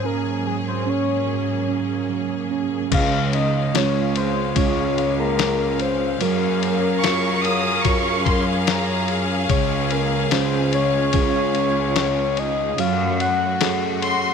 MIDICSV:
0, 0, Header, 1, 7, 480
1, 0, Start_track
1, 0, Key_signature, -5, "major"
1, 0, Tempo, 821918
1, 1708, Time_signature, 4, 2, 24, 8
1, 8373, End_track
2, 0, Start_track
2, 0, Title_t, "Violin section"
2, 0, Program_c, 0, 48
2, 4102, Note_on_c, 0, 85, 97
2, 4328, Note_off_c, 0, 85, 0
2, 4345, Note_on_c, 0, 87, 93
2, 4583, Note_on_c, 0, 85, 95
2, 4586, Note_off_c, 0, 87, 0
2, 4825, Note_off_c, 0, 85, 0
2, 4825, Note_on_c, 0, 84, 85
2, 4933, Note_off_c, 0, 84, 0
2, 5064, Note_on_c, 0, 82, 68
2, 5403, Note_off_c, 0, 82, 0
2, 8189, Note_on_c, 0, 84, 94
2, 8373, Note_off_c, 0, 84, 0
2, 8373, End_track
3, 0, Start_track
3, 0, Title_t, "Soft synth lead"
3, 0, Program_c, 1, 80
3, 33, Note_on_c, 1, 70, 77
3, 269, Note_off_c, 1, 70, 0
3, 273, Note_on_c, 1, 68, 69
3, 326, Note_off_c, 1, 68, 0
3, 396, Note_on_c, 1, 72, 75
3, 521, Note_on_c, 1, 73, 85
3, 529, Note_off_c, 1, 72, 0
3, 994, Note_off_c, 1, 73, 0
3, 1715, Note_on_c, 1, 77, 107
3, 1953, Note_on_c, 1, 75, 98
3, 1962, Note_off_c, 1, 77, 0
3, 2198, Note_on_c, 1, 73, 99
3, 2207, Note_off_c, 1, 75, 0
3, 2433, Note_off_c, 1, 73, 0
3, 2436, Note_on_c, 1, 72, 96
3, 2655, Note_off_c, 1, 72, 0
3, 2670, Note_on_c, 1, 73, 92
3, 3006, Note_off_c, 1, 73, 0
3, 3033, Note_on_c, 1, 70, 94
3, 3393, Note_on_c, 1, 72, 85
3, 3402, Note_off_c, 1, 70, 0
3, 3631, Note_on_c, 1, 70, 91
3, 3640, Note_off_c, 1, 72, 0
3, 4590, Note_off_c, 1, 70, 0
3, 5548, Note_on_c, 1, 73, 97
3, 5793, Note_on_c, 1, 70, 82
3, 5802, Note_off_c, 1, 73, 0
3, 6032, Note_on_c, 1, 72, 86
3, 6040, Note_off_c, 1, 70, 0
3, 6270, Note_off_c, 1, 72, 0
3, 6275, Note_on_c, 1, 73, 114
3, 7237, Note_on_c, 1, 75, 93
3, 7246, Note_off_c, 1, 73, 0
3, 7474, Note_on_c, 1, 77, 108
3, 7483, Note_off_c, 1, 75, 0
3, 7711, Note_off_c, 1, 77, 0
3, 7717, Note_on_c, 1, 78, 102
3, 8169, Note_off_c, 1, 78, 0
3, 8373, End_track
4, 0, Start_track
4, 0, Title_t, "String section"
4, 0, Program_c, 2, 48
4, 0, Note_on_c, 2, 44, 61
4, 0, Note_on_c, 2, 54, 58
4, 0, Note_on_c, 2, 58, 54
4, 0, Note_on_c, 2, 61, 54
4, 0, Note_on_c, 2, 68, 67
4, 1686, Note_off_c, 2, 68, 0
4, 1687, Note_off_c, 2, 54, 0
4, 1687, Note_off_c, 2, 58, 0
4, 1688, Note_off_c, 2, 44, 0
4, 1688, Note_off_c, 2, 61, 0
4, 1709, Note_on_c, 2, 56, 73
4, 1709, Note_on_c, 2, 77, 81
4, 1710, Note_on_c, 2, 61, 69
4, 3609, Note_off_c, 2, 56, 0
4, 3629, Note_on_c, 2, 54, 73
4, 3630, Note_on_c, 2, 68, 66
4, 3630, Note_on_c, 2, 70, 81
4, 5530, Note_off_c, 2, 54, 0
4, 5530, Note_off_c, 2, 70, 0
4, 7445, Note_off_c, 2, 77, 0
4, 7446, Note_off_c, 2, 61, 0
4, 7446, Note_off_c, 2, 68, 0
4, 7464, Note_on_c, 2, 66, 68
4, 7465, Note_on_c, 2, 57, 74
4, 8373, Note_off_c, 2, 57, 0
4, 8373, Note_off_c, 2, 66, 0
4, 8373, End_track
5, 0, Start_track
5, 0, Title_t, "Tine electric piano"
5, 0, Program_c, 3, 4
5, 0, Control_c, 3, 64, 127
5, 0, Note_on_c, 3, 44, 53
5, 28, Note_on_c, 3, 61, 45
5, 263, Note_on_c, 3, 54, 45
5, 498, Note_off_c, 3, 61, 0
5, 505, Note_on_c, 3, 61, 49
5, 733, Note_off_c, 3, 54, 0
5, 740, Note_on_c, 3, 54, 43
5, 973, Note_off_c, 3, 61, 0
5, 980, Note_on_c, 3, 61, 43
5, 1217, Note_off_c, 3, 54, 0
5, 1224, Note_on_c, 3, 54, 45
5, 1457, Note_off_c, 3, 61, 0
5, 1464, Note_on_c, 3, 61, 42
5, 1684, Note_off_c, 3, 44, 0
5, 1692, Note_off_c, 3, 54, 0
5, 1699, Note_off_c, 3, 61, 0
5, 1700, Note_on_c, 3, 49, 66
5, 1715, Control_c, 3, 64, 0
5, 1815, Control_c, 3, 64, 127
5, 2180, Note_on_c, 3, 56, 49
5, 2184, Note_on_c, 3, 61, 43
5, 2187, Note_on_c, 3, 65, 52
5, 2650, Note_off_c, 3, 56, 0
5, 2652, Note_off_c, 3, 61, 0
5, 2653, Note_off_c, 3, 65, 0
5, 2659, Note_on_c, 3, 56, 49
5, 2661, Note_on_c, 3, 61, 44
5, 2666, Note_on_c, 3, 65, 54
5, 3129, Note_off_c, 3, 56, 0
5, 3130, Note_off_c, 3, 61, 0
5, 3133, Note_off_c, 3, 65, 0
5, 3601, Note_off_c, 3, 49, 0
5, 3629, Note_on_c, 3, 54, 70
5, 3637, Control_c, 3, 64, 0
5, 3724, Control_c, 3, 64, 127
5, 4109, Note_on_c, 3, 65, 49
5, 4110, Note_on_c, 3, 66, 45
5, 4112, Note_on_c, 3, 70, 54
5, 4574, Note_off_c, 3, 65, 0
5, 4575, Note_off_c, 3, 66, 0
5, 4576, Note_off_c, 3, 70, 0
5, 4585, Note_on_c, 3, 65, 47
5, 4587, Note_on_c, 3, 66, 44
5, 4590, Note_on_c, 3, 70, 52
5, 5052, Note_off_c, 3, 65, 0
5, 5053, Note_off_c, 3, 66, 0
5, 5055, Note_off_c, 3, 70, 0
5, 5525, Note_off_c, 3, 54, 0
5, 5547, Note_on_c, 3, 49, 67
5, 5555, Control_c, 3, 64, 0
5, 5667, Control_c, 3, 64, 127
5, 6028, Note_on_c, 3, 61, 51
5, 6030, Note_on_c, 3, 65, 44
5, 6031, Note_on_c, 3, 68, 54
5, 6494, Note_off_c, 3, 61, 0
5, 6495, Note_off_c, 3, 65, 0
5, 6495, Note_off_c, 3, 68, 0
5, 6504, Note_on_c, 3, 61, 52
5, 6506, Note_on_c, 3, 65, 45
5, 6511, Note_on_c, 3, 68, 54
5, 6972, Note_off_c, 3, 61, 0
5, 6973, Note_off_c, 3, 65, 0
5, 6975, Note_off_c, 3, 68, 0
5, 7444, Note_off_c, 3, 49, 0
5, 7471, Note_on_c, 3, 54, 73
5, 7476, Control_c, 3, 64, 0
5, 7587, Control_c, 3, 64, 127
5, 7945, Note_on_c, 3, 66, 47
5, 7946, Note_on_c, 3, 68, 45
5, 7950, Note_on_c, 3, 69, 52
5, 8373, Note_off_c, 3, 54, 0
5, 8373, Note_off_c, 3, 66, 0
5, 8373, Note_off_c, 3, 68, 0
5, 8373, Note_off_c, 3, 69, 0
5, 8373, End_track
6, 0, Start_track
6, 0, Title_t, "Cello section"
6, 0, Program_c, 4, 48
6, 1706, Note_on_c, 4, 37, 106
6, 2164, Note_off_c, 4, 37, 0
6, 2184, Note_on_c, 4, 37, 89
6, 2643, Note_off_c, 4, 37, 0
6, 2666, Note_on_c, 4, 37, 95
6, 3604, Note_off_c, 4, 37, 0
6, 3623, Note_on_c, 4, 42, 96
6, 4082, Note_off_c, 4, 42, 0
6, 4105, Note_on_c, 4, 42, 91
6, 4563, Note_off_c, 4, 42, 0
6, 4585, Note_on_c, 4, 42, 90
6, 5523, Note_off_c, 4, 42, 0
6, 5544, Note_on_c, 4, 37, 100
6, 6003, Note_off_c, 4, 37, 0
6, 6025, Note_on_c, 4, 37, 98
6, 6483, Note_off_c, 4, 37, 0
6, 6507, Note_on_c, 4, 37, 101
6, 7444, Note_off_c, 4, 37, 0
6, 7462, Note_on_c, 4, 42, 108
6, 7922, Note_off_c, 4, 42, 0
6, 7945, Note_on_c, 4, 42, 86
6, 8373, Note_off_c, 4, 42, 0
6, 8373, End_track
7, 0, Start_track
7, 0, Title_t, "Drums"
7, 1704, Note_on_c, 9, 49, 83
7, 1704, Note_on_c, 9, 51, 68
7, 1706, Note_on_c, 9, 36, 98
7, 1762, Note_off_c, 9, 49, 0
7, 1762, Note_off_c, 9, 51, 0
7, 1764, Note_off_c, 9, 36, 0
7, 1946, Note_on_c, 9, 51, 56
7, 2005, Note_off_c, 9, 51, 0
7, 2189, Note_on_c, 9, 51, 78
7, 2193, Note_on_c, 9, 38, 92
7, 2247, Note_off_c, 9, 51, 0
7, 2251, Note_off_c, 9, 38, 0
7, 2427, Note_on_c, 9, 51, 63
7, 2485, Note_off_c, 9, 51, 0
7, 2662, Note_on_c, 9, 51, 72
7, 2666, Note_on_c, 9, 36, 86
7, 2721, Note_off_c, 9, 51, 0
7, 2724, Note_off_c, 9, 36, 0
7, 2909, Note_on_c, 9, 51, 47
7, 2967, Note_off_c, 9, 51, 0
7, 3147, Note_on_c, 9, 51, 67
7, 3151, Note_on_c, 9, 38, 97
7, 3206, Note_off_c, 9, 51, 0
7, 3209, Note_off_c, 9, 38, 0
7, 3384, Note_on_c, 9, 51, 51
7, 3443, Note_off_c, 9, 51, 0
7, 3624, Note_on_c, 9, 51, 68
7, 3683, Note_off_c, 9, 51, 0
7, 3870, Note_on_c, 9, 51, 55
7, 3929, Note_off_c, 9, 51, 0
7, 4109, Note_on_c, 9, 51, 80
7, 4113, Note_on_c, 9, 38, 98
7, 4168, Note_off_c, 9, 51, 0
7, 4172, Note_off_c, 9, 38, 0
7, 4349, Note_on_c, 9, 51, 62
7, 4407, Note_off_c, 9, 51, 0
7, 4582, Note_on_c, 9, 51, 73
7, 4586, Note_on_c, 9, 36, 82
7, 4641, Note_off_c, 9, 51, 0
7, 4644, Note_off_c, 9, 36, 0
7, 4825, Note_on_c, 9, 36, 86
7, 4827, Note_on_c, 9, 51, 51
7, 4883, Note_off_c, 9, 36, 0
7, 4885, Note_off_c, 9, 51, 0
7, 5065, Note_on_c, 9, 51, 65
7, 5068, Note_on_c, 9, 38, 105
7, 5123, Note_off_c, 9, 51, 0
7, 5126, Note_off_c, 9, 38, 0
7, 5303, Note_on_c, 9, 51, 48
7, 5361, Note_off_c, 9, 51, 0
7, 5545, Note_on_c, 9, 51, 69
7, 5546, Note_on_c, 9, 36, 104
7, 5603, Note_off_c, 9, 51, 0
7, 5604, Note_off_c, 9, 36, 0
7, 5785, Note_on_c, 9, 51, 58
7, 5843, Note_off_c, 9, 51, 0
7, 6022, Note_on_c, 9, 51, 80
7, 6027, Note_on_c, 9, 38, 94
7, 6081, Note_off_c, 9, 51, 0
7, 6085, Note_off_c, 9, 38, 0
7, 6265, Note_on_c, 9, 51, 62
7, 6323, Note_off_c, 9, 51, 0
7, 6499, Note_on_c, 9, 51, 73
7, 6505, Note_on_c, 9, 36, 85
7, 6557, Note_off_c, 9, 51, 0
7, 6564, Note_off_c, 9, 36, 0
7, 6743, Note_on_c, 9, 51, 53
7, 6802, Note_off_c, 9, 51, 0
7, 6983, Note_on_c, 9, 51, 69
7, 6987, Note_on_c, 9, 38, 94
7, 7041, Note_off_c, 9, 51, 0
7, 7045, Note_off_c, 9, 38, 0
7, 7224, Note_on_c, 9, 51, 50
7, 7283, Note_off_c, 9, 51, 0
7, 7465, Note_on_c, 9, 51, 69
7, 7524, Note_off_c, 9, 51, 0
7, 7710, Note_on_c, 9, 51, 58
7, 7768, Note_off_c, 9, 51, 0
7, 7946, Note_on_c, 9, 51, 83
7, 7950, Note_on_c, 9, 38, 98
7, 8004, Note_off_c, 9, 51, 0
7, 8009, Note_off_c, 9, 38, 0
7, 8190, Note_on_c, 9, 51, 61
7, 8249, Note_off_c, 9, 51, 0
7, 8373, End_track
0, 0, End_of_file